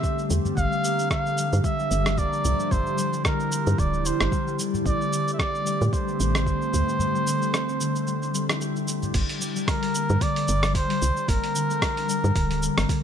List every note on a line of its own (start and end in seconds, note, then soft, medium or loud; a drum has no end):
0.00 0.56 D3 medium
0.00 0.53 E3 medium
0.00 0.30 G3 loud
0.00 0.53 A3 medium
0.00 0.90 A3 medium
0.00 0.53 C4 medium
0.00 0.99 C4 medium
0.00 0.19 D4 medium
0.00 4.82 G4 medium
0.00 0.30 E5 loud
0.00 kick loud
0.00 cabasa soft
0.19 1.53 D4 medium
0.19 cabasa soft
0.30 0.40 E2 medium
0.30 0.44 G3 medium
0.30 cabasa medium
0.45 0.62 G3 loud
0.45 udu medium
0.45 cabasa soft
0.57 0.67 G1 medium
0.57 1.10 D3 medium
0.57 4.82 F3 medium
0.57 2.70 D4 medium
0.57 1.07 F5 loud
0.57 kick loud
0.57 cabasa soft
0.72 1.16 G3 medium
0.72 cabasa soft
0.84 1.32 A#3 medium
0.84 cabasa medium
0.99 2.33 C4 medium
0.99 cabasa soft
1.11 1.90 D3 medium
1.11 1.59 F5 loud
1.11 kick loud
1.11 cross-stick medium
1.11 cabasa soft
1.26 2.24 A3 medium
1.26 cabasa soft
1.38 1.64 G3 medium
1.38 cabasa medium
1.53 1.60 G2 loud
1.53 2.86 D4 medium
1.53 cabasa soft
1.59 1.66 F5 medium
1.64 1.78 G3 medium
1.64 2.20 E5 loud
1.64 kick loud
1.64 cabasa soft
1.79 1.96 G3 loud
1.79 cabasa soft
1.91 2.19 G1 loud
1.91 2.44 D3 medium
1.91 cabasa medium
2.06 2.50 G3 medium
2.06 cross-stick medium
2.06 cabasa soft
2.18 2.27 F1 medium
2.18 2.65 A#3 medium
2.18 2.73 D5 loud
2.18 kick loud
2.18 cabasa soft
2.33 3.66 C4 medium
2.33 cabasa soft
2.44 2.54 C2 medium
2.44 3.24 D3 medium
2.44 udu medium
2.44 cabasa medium
2.59 3.58 A3 medium
2.59 cabasa soft
2.71 2.81 G1 medium
2.71 2.97 G3 medium
2.71 4.84 E4 medium
2.71 3.25 C5 loud
2.71 kick medium
2.71 udu medium
2.71 cabasa soft
2.86 4.20 D4 medium
2.86 cabasa soft
2.98 3.12 G3 medium
2.98 cabasa medium
3.13 3.30 G3 medium
3.13 cabasa soft
3.25 3.77 D3 medium
3.25 3.81 A#4 medium
3.25 kick loud
3.25 cross-stick medium
3.25 cabasa soft
3.40 3.84 G3 medium
3.40 cabasa soft
3.52 3.99 A#3 medium
3.52 cabasa medium
3.67 3.75 G2 loud
3.67 5.00 C4 medium
3.67 cabasa soft
3.78 4.12 D1 medium
3.78 4.58 D3 medium
3.78 4.08 D5 medium
3.78 kick loud
3.78 cabasa soft
3.93 4.85 A3 medium
3.93 cabasa soft
4.05 4.31 G3 medium
4.05 4.59 C5 medium
4.05 cabasa medium
4.20 4.28 G1 medium
4.20 5.54 D4 medium
4.20 cross-stick medium
4.20 cabasa soft
4.32 4.46 G3 loud
4.32 kick loud
4.32 cabasa soft
4.47 4.64 G3 loud
4.47 cabasa soft
4.59 4.91 D3 medium
4.59 cabasa medium
4.74 4.91 G3 medium
4.74 udu medium
4.74 cabasa soft
4.85 4.95 A1 medium
4.85 9.10 E3 medium
4.85 9.10 A3 medium
4.85 5.27 A3 medium
4.85 9.10 C4 medium
4.85 6.98 G4 medium
4.85 5.30 D5 loud
4.85 kick loud
4.85 cabasa soft
5.01 6.34 C4 medium
5.01 cabasa soft
5.13 5.92 D3 medium
5.13 cabasa medium
5.28 6.19 A3 medium
5.28 cabasa soft
5.34 5.41 E5 medium
5.39 5.65 G3 medium
5.39 5.87 D5 loud
5.39 kick loud
5.39 cross-stick medium
5.39 cabasa soft
5.55 6.88 D4 medium
5.55 cabasa soft
5.66 5.80 G3 medium
5.66 cabasa medium
5.81 5.89 A2 loud
5.81 5.98 G3 loud
5.81 cabasa soft
5.87 5.95 D5 medium
5.93 6.45 D3 medium
5.93 8.61 C5 loud
5.93 kick loud
5.93 cabasa soft
6.08 6.52 G3 medium
6.08 cabasa soft
6.19 6.48 A1 loud
6.19 6.61 A3 medium
6.19 cabasa medium
6.34 7.68 C4 medium
6.34 cross-stick medium
6.34 cabasa soft
6.46 6.56 G1 medium
6.46 7.25 D3 medium
6.46 kick medium
6.46 cabasa soft
6.61 7.53 A3 medium
6.61 cabasa soft
6.73 6.83 D2 medium
6.73 6.99 G3 medium
6.73 udu medium
6.73 cabasa medium
6.88 8.21 D4 medium
6.88 cabasa soft
6.99 7.13 G3 medium
6.99 9.12 A4 medium
6.99 udu medium
6.99 cabasa soft
7.15 7.32 G3 loud
7.15 cabasa soft
7.26 7.79 D3 medium
7.26 cabasa medium
7.41 7.86 G3 medium
7.41 cabasa soft
7.53 7.95 A3 medium
7.53 cross-stick medium
7.53 cabasa soft
7.68 10.10 C4 medium
7.68 cabasa soft
7.80 9.19 D3 medium
7.80 cabasa medium
7.95 8.87 A3 medium
7.95 cabasa soft
8.07 8.33 G3 medium
8.07 cabasa soft
8.22 9.02 D4 medium
8.22 cabasa soft
8.34 9.13 G3 medium
8.34 cabasa medium
8.49 8.75 E4 loud
8.49 cross-stick medium
8.49 cabasa soft
8.61 10.96 G4 medium
8.61 cabasa soft
8.76 11.37 E4 medium
8.76 cabasa soft
8.88 10.01 A3 medium
8.88 cabasa medium
9.03 9.29 D4 medium
9.03 udu medium
9.03 cabasa soft
9.14 9.24 G1 medium
9.14 9.40 G3 medium
9.14 kick loud
9.14 open hi-hat medium
9.14 crash loud
9.14 cabasa soft
9.29 10.63 D4 medium
9.29 open hi-hat soft
9.29 cabasa soft
9.41 9.55 G3 medium
9.41 cabasa medium
9.56 9.73 G3 medium
9.56 cabasa soft
9.68 10.21 D3 medium
9.68 10.24 A#4 loud
9.68 kick loud
9.68 cross-stick medium
9.68 open hi-hat medium
9.68 cabasa soft
9.83 10.27 G3 medium
9.83 open hi-hat soft
9.83 cabasa soft
9.95 10.43 A#3 medium
9.95 cabasa medium
10.09 10.17 G2 loud
10.09 11.43 C4 medium
10.09 cabasa soft
10.21 11.00 D3 medium
10.21 10.75 D5 loud
10.21 kick loud
10.21 open hi-hat medium
10.21 cabasa soft
10.36 11.34 A3 medium
10.36 open hi-hat soft
10.36 cabasa soft
10.48 10.76 G1 loud
10.48 10.74 G3 medium
10.48 cabasa medium
10.63 11.97 D4 medium
10.63 cross-stick medium
10.63 open hi-hat soft
10.63 cabasa soft
10.75 10.85 F1 medium
10.75 10.89 G3 loud
10.75 11.30 C5 loud
10.75 kick loud
10.75 open hi-hat medium
10.75 cabasa soft
10.90 11.07 G3 loud
10.90 open hi-hat soft
10.90 cabasa soft
11.02 11.12 C2 medium
11.02 11.54 D3 medium
11.02 cabasa medium
11.17 11.61 G3 medium
11.17 cabasa soft
11.28 11.38 G1 loud
11.28 11.76 A#3 medium
11.28 13.03 A#4 loud
11.28 kick loud
11.28 open hi-hat medium
11.28 cabasa soft
11.44 12.77 C4 medium
11.44 open hi-hat soft
11.44 cabasa soft
11.55 12.34 D3 medium
11.55 cabasa medium
11.70 12.69 A3 medium
11.70 cabasa soft
11.82 kick loud
11.82 cross-stick medium
11.82 open hi-hat medium
11.82 cabasa soft
11.97 13.03 D4 medium
11.97 open hi-hat soft
11.97 cabasa soft
12.09 12.22 G3 loud
12.09 cabasa medium
12.24 12.32 G2 loud
12.24 12.41 G3 loud
12.24 cabasa soft
12.35 12.69 D1 medium
12.35 12.88 D3 medium
12.35 kick loud
12.35 open hi-hat medium
12.35 cabasa soft
12.51 12.94 G3 medium
12.51 open hi-hat soft
12.51 cabasa soft
12.62 13.03 A#3 medium
12.62 cabasa medium
12.78 12.85 G1 medium
12.78 13.03 C4 medium
12.78 cross-stick medium
12.78 open hi-hat soft
12.78 cabasa soft
12.89 13.03 D3 medium
12.89 kick loud
12.89 open hi-hat medium
12.89 cabasa soft